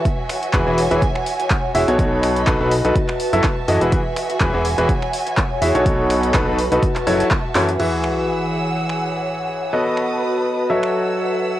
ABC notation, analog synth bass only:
X:1
M:4/4
L:1/16
Q:"Swing 16ths" 1/4=124
K:E
V:1 name="Analog synth bass" clef=bass
z4 E,,, E,,,2 E,,, z6 E,,, B,,,- | B,,,4 B,,, B,,,2 B,,, z3 F,,, z2 F,, E,,, | z4 E,,, E,,,2 E,,, z6 E,, B,,,- | B,,,4 B,,, B,,,2 B,,, z2 F,,, z3 F,,2 |
z16 | z16 |]